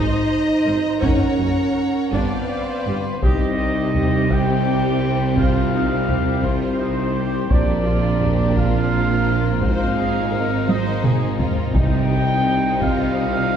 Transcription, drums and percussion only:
0, 0, Header, 1, 2, 480
1, 0, Start_track
1, 0, Tempo, 725514
1, 675, Time_signature, 6, 3, 24, 8
1, 3080, Tempo, 709220
1, 9111, End_track
2, 0, Start_track
2, 0, Title_t, "Taiko and cinematic ensemble drums"
2, 676, Note_on_c, 9, 41, 79
2, 743, Note_off_c, 9, 41, 0
2, 1409, Note_on_c, 9, 41, 66
2, 1475, Note_off_c, 9, 41, 0
2, 2133, Note_on_c, 9, 41, 90
2, 2200, Note_off_c, 9, 41, 0
2, 2610, Note_on_c, 9, 43, 50
2, 2676, Note_off_c, 9, 43, 0
2, 2845, Note_on_c, 9, 41, 71
2, 2912, Note_off_c, 9, 41, 0
2, 3565, Note_on_c, 9, 41, 87
2, 3633, Note_off_c, 9, 41, 0
2, 4050, Note_on_c, 9, 43, 51
2, 4118, Note_off_c, 9, 43, 0
2, 4289, Note_on_c, 9, 41, 72
2, 4357, Note_off_c, 9, 41, 0
2, 5007, Note_on_c, 9, 41, 90
2, 5075, Note_off_c, 9, 41, 0
2, 5489, Note_on_c, 9, 43, 50
2, 5557, Note_off_c, 9, 43, 0
2, 5731, Note_on_c, 9, 41, 74
2, 5799, Note_off_c, 9, 41, 0
2, 6444, Note_on_c, 9, 41, 90
2, 6512, Note_off_c, 9, 41, 0
2, 7163, Note_on_c, 9, 48, 69
2, 7231, Note_off_c, 9, 48, 0
2, 7401, Note_on_c, 9, 47, 76
2, 7468, Note_off_c, 9, 47, 0
2, 7640, Note_on_c, 9, 43, 85
2, 7708, Note_off_c, 9, 43, 0
2, 7875, Note_on_c, 9, 41, 87
2, 7943, Note_off_c, 9, 41, 0
2, 8600, Note_on_c, 9, 41, 70
2, 8668, Note_off_c, 9, 41, 0
2, 9111, End_track
0, 0, End_of_file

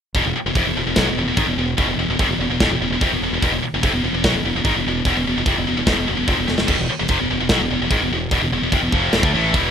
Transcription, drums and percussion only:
0, 0, Header, 1, 2, 480
1, 0, Start_track
1, 0, Tempo, 408441
1, 182, Time_signature, 4, 2, 24, 8
1, 11409, End_track
2, 0, Start_track
2, 0, Title_t, "Drums"
2, 171, Note_on_c, 9, 36, 99
2, 173, Note_on_c, 9, 46, 54
2, 289, Note_off_c, 9, 36, 0
2, 291, Note_off_c, 9, 46, 0
2, 651, Note_on_c, 9, 36, 100
2, 653, Note_on_c, 9, 46, 60
2, 769, Note_off_c, 9, 36, 0
2, 770, Note_off_c, 9, 46, 0
2, 1128, Note_on_c, 9, 38, 108
2, 1128, Note_on_c, 9, 46, 63
2, 1131, Note_on_c, 9, 36, 108
2, 1246, Note_off_c, 9, 38, 0
2, 1246, Note_off_c, 9, 46, 0
2, 1249, Note_off_c, 9, 36, 0
2, 1609, Note_on_c, 9, 46, 62
2, 1611, Note_on_c, 9, 36, 96
2, 1727, Note_off_c, 9, 46, 0
2, 1729, Note_off_c, 9, 36, 0
2, 2092, Note_on_c, 9, 46, 51
2, 2093, Note_on_c, 9, 36, 102
2, 2210, Note_off_c, 9, 36, 0
2, 2210, Note_off_c, 9, 46, 0
2, 2578, Note_on_c, 9, 36, 97
2, 2579, Note_on_c, 9, 46, 56
2, 2695, Note_off_c, 9, 36, 0
2, 2696, Note_off_c, 9, 46, 0
2, 3061, Note_on_c, 9, 36, 100
2, 3061, Note_on_c, 9, 38, 99
2, 3061, Note_on_c, 9, 46, 56
2, 3178, Note_off_c, 9, 36, 0
2, 3179, Note_off_c, 9, 38, 0
2, 3179, Note_off_c, 9, 46, 0
2, 3540, Note_on_c, 9, 36, 98
2, 3541, Note_on_c, 9, 46, 50
2, 3658, Note_off_c, 9, 36, 0
2, 3659, Note_off_c, 9, 46, 0
2, 4025, Note_on_c, 9, 36, 98
2, 4036, Note_on_c, 9, 46, 57
2, 4142, Note_off_c, 9, 36, 0
2, 4153, Note_off_c, 9, 46, 0
2, 4504, Note_on_c, 9, 36, 113
2, 4508, Note_on_c, 9, 46, 59
2, 4621, Note_off_c, 9, 36, 0
2, 4625, Note_off_c, 9, 46, 0
2, 4984, Note_on_c, 9, 36, 102
2, 4987, Note_on_c, 9, 38, 118
2, 4987, Note_on_c, 9, 46, 56
2, 5101, Note_off_c, 9, 36, 0
2, 5105, Note_off_c, 9, 38, 0
2, 5105, Note_off_c, 9, 46, 0
2, 5462, Note_on_c, 9, 36, 97
2, 5464, Note_on_c, 9, 46, 57
2, 5579, Note_off_c, 9, 36, 0
2, 5581, Note_off_c, 9, 46, 0
2, 5935, Note_on_c, 9, 46, 62
2, 5937, Note_on_c, 9, 36, 90
2, 6053, Note_off_c, 9, 46, 0
2, 6055, Note_off_c, 9, 36, 0
2, 6417, Note_on_c, 9, 36, 107
2, 6419, Note_on_c, 9, 46, 61
2, 6534, Note_off_c, 9, 36, 0
2, 6537, Note_off_c, 9, 46, 0
2, 6897, Note_on_c, 9, 36, 116
2, 6897, Note_on_c, 9, 38, 103
2, 6897, Note_on_c, 9, 46, 57
2, 7014, Note_off_c, 9, 36, 0
2, 7015, Note_off_c, 9, 38, 0
2, 7015, Note_off_c, 9, 46, 0
2, 7378, Note_on_c, 9, 36, 103
2, 7381, Note_on_c, 9, 46, 51
2, 7496, Note_off_c, 9, 36, 0
2, 7499, Note_off_c, 9, 46, 0
2, 7616, Note_on_c, 9, 38, 56
2, 7733, Note_off_c, 9, 38, 0
2, 7733, Note_on_c, 9, 38, 88
2, 7850, Note_off_c, 9, 38, 0
2, 7850, Note_on_c, 9, 49, 99
2, 7853, Note_on_c, 9, 36, 101
2, 7967, Note_off_c, 9, 49, 0
2, 7970, Note_off_c, 9, 36, 0
2, 8323, Note_on_c, 9, 46, 60
2, 8331, Note_on_c, 9, 36, 98
2, 8441, Note_off_c, 9, 46, 0
2, 8448, Note_off_c, 9, 36, 0
2, 8805, Note_on_c, 9, 38, 122
2, 8805, Note_on_c, 9, 46, 62
2, 8811, Note_on_c, 9, 36, 101
2, 8922, Note_off_c, 9, 38, 0
2, 8922, Note_off_c, 9, 46, 0
2, 8929, Note_off_c, 9, 36, 0
2, 9291, Note_on_c, 9, 36, 97
2, 9293, Note_on_c, 9, 46, 56
2, 9409, Note_off_c, 9, 36, 0
2, 9410, Note_off_c, 9, 46, 0
2, 9769, Note_on_c, 9, 36, 109
2, 9774, Note_on_c, 9, 46, 55
2, 9886, Note_off_c, 9, 36, 0
2, 9892, Note_off_c, 9, 46, 0
2, 10249, Note_on_c, 9, 36, 100
2, 10252, Note_on_c, 9, 46, 55
2, 10367, Note_off_c, 9, 36, 0
2, 10369, Note_off_c, 9, 46, 0
2, 10488, Note_on_c, 9, 36, 106
2, 10605, Note_off_c, 9, 36, 0
2, 10729, Note_on_c, 9, 38, 111
2, 10729, Note_on_c, 9, 46, 62
2, 10846, Note_off_c, 9, 38, 0
2, 10846, Note_off_c, 9, 46, 0
2, 10849, Note_on_c, 9, 36, 119
2, 10966, Note_off_c, 9, 36, 0
2, 11213, Note_on_c, 9, 36, 101
2, 11215, Note_on_c, 9, 46, 55
2, 11330, Note_off_c, 9, 36, 0
2, 11332, Note_off_c, 9, 46, 0
2, 11409, End_track
0, 0, End_of_file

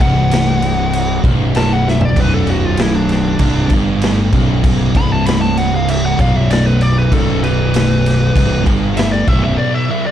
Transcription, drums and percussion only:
0, 0, Header, 1, 2, 480
1, 0, Start_track
1, 0, Tempo, 617920
1, 1687, Time_signature, 4, 2, 24, 8
1, 7856, End_track
2, 0, Start_track
2, 0, Title_t, "Drums"
2, 1, Note_on_c, 9, 36, 107
2, 4, Note_on_c, 9, 49, 63
2, 78, Note_off_c, 9, 36, 0
2, 82, Note_off_c, 9, 49, 0
2, 243, Note_on_c, 9, 49, 87
2, 262, Note_on_c, 9, 38, 120
2, 321, Note_off_c, 9, 49, 0
2, 340, Note_off_c, 9, 38, 0
2, 484, Note_on_c, 9, 49, 63
2, 562, Note_off_c, 9, 49, 0
2, 725, Note_on_c, 9, 49, 80
2, 803, Note_off_c, 9, 49, 0
2, 962, Note_on_c, 9, 36, 106
2, 968, Note_on_c, 9, 49, 59
2, 1040, Note_off_c, 9, 36, 0
2, 1046, Note_off_c, 9, 49, 0
2, 1202, Note_on_c, 9, 49, 70
2, 1220, Note_on_c, 9, 38, 110
2, 1279, Note_off_c, 9, 49, 0
2, 1298, Note_off_c, 9, 38, 0
2, 1462, Note_on_c, 9, 38, 64
2, 1539, Note_off_c, 9, 38, 0
2, 1561, Note_on_c, 9, 43, 93
2, 1639, Note_off_c, 9, 43, 0
2, 1681, Note_on_c, 9, 36, 113
2, 1682, Note_on_c, 9, 49, 83
2, 1759, Note_off_c, 9, 36, 0
2, 1760, Note_off_c, 9, 49, 0
2, 1918, Note_on_c, 9, 49, 62
2, 1995, Note_off_c, 9, 49, 0
2, 2154, Note_on_c, 9, 49, 87
2, 2173, Note_on_c, 9, 38, 121
2, 2232, Note_off_c, 9, 49, 0
2, 2251, Note_off_c, 9, 38, 0
2, 2401, Note_on_c, 9, 49, 69
2, 2419, Note_on_c, 9, 38, 35
2, 2479, Note_off_c, 9, 49, 0
2, 2497, Note_off_c, 9, 38, 0
2, 2634, Note_on_c, 9, 49, 90
2, 2639, Note_on_c, 9, 36, 107
2, 2711, Note_off_c, 9, 49, 0
2, 2716, Note_off_c, 9, 36, 0
2, 2872, Note_on_c, 9, 49, 66
2, 2879, Note_on_c, 9, 36, 107
2, 2950, Note_off_c, 9, 49, 0
2, 2956, Note_off_c, 9, 36, 0
2, 3119, Note_on_c, 9, 49, 81
2, 3138, Note_on_c, 9, 38, 103
2, 3197, Note_off_c, 9, 49, 0
2, 3215, Note_off_c, 9, 38, 0
2, 3361, Note_on_c, 9, 49, 67
2, 3362, Note_on_c, 9, 36, 109
2, 3438, Note_off_c, 9, 49, 0
2, 3439, Note_off_c, 9, 36, 0
2, 3602, Note_on_c, 9, 49, 88
2, 3603, Note_on_c, 9, 36, 114
2, 3680, Note_off_c, 9, 49, 0
2, 3681, Note_off_c, 9, 36, 0
2, 3844, Note_on_c, 9, 36, 108
2, 3844, Note_on_c, 9, 49, 66
2, 3921, Note_off_c, 9, 49, 0
2, 3922, Note_off_c, 9, 36, 0
2, 4089, Note_on_c, 9, 49, 87
2, 4107, Note_on_c, 9, 38, 119
2, 4166, Note_off_c, 9, 49, 0
2, 4185, Note_off_c, 9, 38, 0
2, 4330, Note_on_c, 9, 49, 66
2, 4407, Note_off_c, 9, 49, 0
2, 4571, Note_on_c, 9, 49, 86
2, 4649, Note_off_c, 9, 49, 0
2, 4809, Note_on_c, 9, 36, 110
2, 4812, Note_on_c, 9, 49, 61
2, 4886, Note_off_c, 9, 36, 0
2, 4889, Note_off_c, 9, 49, 0
2, 5053, Note_on_c, 9, 49, 76
2, 5072, Note_on_c, 9, 38, 110
2, 5131, Note_off_c, 9, 49, 0
2, 5150, Note_off_c, 9, 38, 0
2, 5290, Note_on_c, 9, 49, 61
2, 5368, Note_off_c, 9, 49, 0
2, 5530, Note_on_c, 9, 36, 115
2, 5531, Note_on_c, 9, 49, 77
2, 5608, Note_off_c, 9, 36, 0
2, 5609, Note_off_c, 9, 49, 0
2, 5776, Note_on_c, 9, 49, 60
2, 5854, Note_off_c, 9, 49, 0
2, 6012, Note_on_c, 9, 49, 86
2, 6031, Note_on_c, 9, 38, 123
2, 6090, Note_off_c, 9, 49, 0
2, 6108, Note_off_c, 9, 38, 0
2, 6262, Note_on_c, 9, 49, 69
2, 6281, Note_on_c, 9, 38, 38
2, 6340, Note_off_c, 9, 49, 0
2, 6359, Note_off_c, 9, 38, 0
2, 6491, Note_on_c, 9, 36, 115
2, 6497, Note_on_c, 9, 49, 85
2, 6569, Note_off_c, 9, 36, 0
2, 6574, Note_off_c, 9, 49, 0
2, 6729, Note_on_c, 9, 36, 112
2, 6732, Note_on_c, 9, 49, 63
2, 6807, Note_off_c, 9, 36, 0
2, 6810, Note_off_c, 9, 49, 0
2, 6967, Note_on_c, 9, 49, 81
2, 6986, Note_on_c, 9, 38, 114
2, 7045, Note_off_c, 9, 49, 0
2, 7063, Note_off_c, 9, 38, 0
2, 7206, Note_on_c, 9, 36, 110
2, 7206, Note_on_c, 9, 49, 63
2, 7283, Note_off_c, 9, 49, 0
2, 7284, Note_off_c, 9, 36, 0
2, 7856, End_track
0, 0, End_of_file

